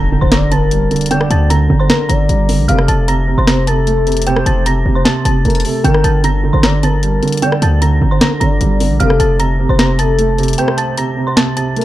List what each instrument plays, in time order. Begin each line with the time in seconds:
Already playing: 808-style bass G1, grand piano D3, synth bell A#5 A#6, impact
0.12 grand piano D3
0.21 808-style bass G1, synth bell C5 C6
0.32 grand piano D3, soft synth lead D5, synth bell A#5 A#6, cross-stick, snare, closed hi-hat
0.52 grand piano D3, soft synth lead A#4, synth bell A5 A6, closed hi-hat
0.71 grand piano G3, closed hi-hat
0.91 grand piano D3, closed hi-hat
0.96 closed hi-hat
1.01 closed hi-hat
1.06 closed hi-hat
1.11 grand piano D3, soft synth lead D5, synth bell G5 G6, closed hi-hat
1.21 cross-stick
1.30 808-style bass D2, synth bell A5 A6, closed hi-hat
1.50 grand piano D3, synth bell A#5 A#6, closed hi-hat
1.70 808-style bass G1, grand piano D3
1.80 synth bell C5 C6
1.89 grand piano D3, soft synth lead A#4, synth bell A#5 A#6, cross-stick, snare, closed hi-hat
2.09 808-style bass G1, grand piano D3, soft synth lead D5, synth bell A#5 A#6, closed hi-hat
2.29 808-style bass G1, grand piano G3, closed hi-hat
2.49 grand piano D3, open hi-hat
2.59 808-style bass A#1
2.68 808-style bass F1, grand piano C3, soft synth lead A4, synth bell F5 F6, closed hi-hat
2.79 cross-stick
2.88 808-style bass F1, synth bell A5 A6, closed hi-hat
3.08 grand piano C3, synth bell A#5 A#6, closed hi-hat
3.28 grand piano C3
3.38 808-style bass F1, synth bell C5 C6
3.47 grand piano C3, soft synth lead C5, synth bell A#5 A#6, cross-stick, snare, closed hi-hat
3.67 grand piano C3, soft synth lead A4, synth bell A5 A6, closed hi-hat
3.87 grand piano A3, closed hi-hat
4.07 grand piano C3, closed hi-hat
4.12 closed hi-hat
4.17 closed hi-hat
4.22 closed hi-hat
4.26 grand piano C3, soft synth lead C5, synth bell G5 G6, closed hi-hat
4.36 cross-stick
4.46 808-style bass F1, synth bell A5 A6, closed hi-hat
4.66 grand piano C3, synth bell A#5 A#6, closed hi-hat
4.85 808-style bass F1, grand piano C3
4.95 synth bell C5 C6
5.05 grand piano C3, synth bell A5 A6, snare, closed hi-hat
5.25 808-style bass F1, grand piano C3, synth bell A5 A6, closed hi-hat
5.45 808-style bass F1, grand piano A3, soft synth lead A#4, closed hi-hat
5.50 closed hi-hat
5.55 closed hi-hat
5.60 closed hi-hat
5.64 grand piano C3, soft synth lead A4, open hi-hat
5.84 808-style bass G1, grand piano D3, soft synth lead A#4, synth bell G5 G6, closed hi-hat
5.94 cross-stick
6.04 808-style bass G1, synth bell A5 A6, closed hi-hat
6.24 grand piano D3, synth bell A#5 A#6, closed hi-hat
6.44 grand piano D3
6.53 808-style bass G1, synth bell C5 C6
6.63 grand piano D3, soft synth lead D5, synth bell A#5 A#6, cross-stick, snare, closed hi-hat
6.83 grand piano D3, soft synth lead A#4, synth bell A5 A6, closed hi-hat
7.03 grand piano G3, closed hi-hat
7.23 grand piano D3, closed hi-hat
7.28 closed hi-hat
7.32 closed hi-hat
7.37 closed hi-hat
7.42 grand piano D3, soft synth lead D5, synth bell G5 G6, closed hi-hat
7.52 cross-stick
7.62 808-style bass D2, synth bell A5 A6, closed hi-hat
7.82 grand piano D3, synth bell A#5 A#6, closed hi-hat
8.01 808-style bass G1, grand piano D3
8.11 synth bell C5 C6
8.21 grand piano D3, soft synth lead A#4, synth bell A#5 A#6, cross-stick, snare, closed hi-hat
8.40 808-style bass G1, grand piano D3, soft synth lead D5, synth bell A#5 A#6, closed hi-hat
8.61 808-style bass G1, grand piano G3, closed hi-hat
8.80 grand piano D3, open hi-hat
8.90 808-style bass A#1
9.00 808-style bass F1, grand piano C3, soft synth lead A4, synth bell F5 F6, closed hi-hat
9.10 cross-stick
9.20 808-style bass F1, synth bell A5 A6, closed hi-hat
9.39 grand piano C3, synth bell A#5 A#6, closed hi-hat
9.59 grand piano C3
9.69 808-style bass F1, synth bell C5 C6
9.79 grand piano C3, soft synth lead C5, synth bell A#5 A#6, cross-stick, snare, closed hi-hat
9.99 grand piano C3, soft synth lead A4, synth bell A5 A6, closed hi-hat
10.19 grand piano A3, closed hi-hat
10.38 grand piano C3, closed hi-hat
10.43 closed hi-hat
10.48 closed hi-hat
10.53 closed hi-hat
10.58 grand piano C3, soft synth lead C5, synth bell G5 G6, closed hi-hat
10.68 cross-stick
10.77 synth bell A5 A6, closed hi-hat
10.97 grand piano C3, synth bell A#5 A#6, closed hi-hat
11.17 grand piano C3
11.27 synth bell C5 C6
11.37 grand piano C3, synth bell A5 A6, snare, closed hi-hat
11.57 grand piano C3, synth bell A5 A6, closed hi-hat
11.76 grand piano A3, soft synth lead A#4, closed hi-hat
11.81 closed hi-hat